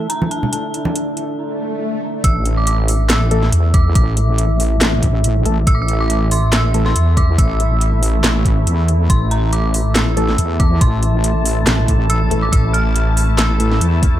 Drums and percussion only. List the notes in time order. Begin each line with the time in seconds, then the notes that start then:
0.10 closed hi-hat
0.22 high conga
0.31 closed hi-hat
0.43 low conga
0.53 closed hi-hat
0.74 closed hi-hat
0.85 high conga
0.96 closed hi-hat
1.17 closed hi-hat
2.24 kick, closed hi-hat
2.45 closed hi-hat
2.67 closed hi-hat
2.88 open hi-hat
3.10 snare, clap, closed hi-hat
3.31 closed hi-hat
3.43 snare
3.52 closed hi-hat
3.74 kick, closed hi-hat
3.95 kick, closed hi-hat
4.17 closed hi-hat
4.38 closed hi-hat
4.60 open hi-hat
4.81 snare, clap, closed hi-hat
5.03 kick, closed hi-hat
5.24 closed hi-hat
5.46 closed hi-hat
5.67 kick, closed hi-hat
5.88 closed hi-hat
6.10 closed hi-hat
6.31 open hi-hat
6.53 snare, clap, closed hi-hat
6.74 closed hi-hat
6.86 snare
6.96 closed hi-hat
7.17 kick, closed hi-hat
7.38 kick, closed hi-hat
7.60 closed hi-hat
7.81 closed hi-hat
8.03 open hi-hat
8.24 snare, clap, closed hi-hat
8.45 kick, closed hi-hat
8.67 closed hi-hat
8.88 closed hi-hat
9.10 kick, closed hi-hat
9.31 closed hi-hat
9.53 closed hi-hat
9.74 open hi-hat
9.96 snare, clap, closed hi-hat
10.17 closed hi-hat
10.29 snare
10.38 closed hi-hat
10.60 kick, closed hi-hat
10.81 kick, closed hi-hat
11.03 closed hi-hat
11.24 closed hi-hat
11.45 open hi-hat
11.67 snare, clap, closed hi-hat
11.88 kick, closed hi-hat
12.10 closed hi-hat
12.31 closed hi-hat
12.53 kick, closed hi-hat
12.74 closed hi-hat
12.96 closed hi-hat
13.17 open hi-hat
13.38 snare, clap, closed hi-hat
13.60 closed hi-hat
13.72 snare
13.81 closed hi-hat
14.03 kick, closed hi-hat